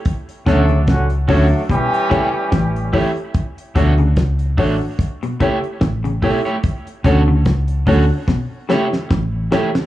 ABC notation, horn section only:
X:1
M:4/4
L:1/16
Q:"Swing 16ths" 1/4=73
K:D
V:1 name="Horn section"
z2 [F,A,DA]2 [D,F,CF] z [F,A,DA]2 [E,G,CG]6 z2 | z16 | z16 |]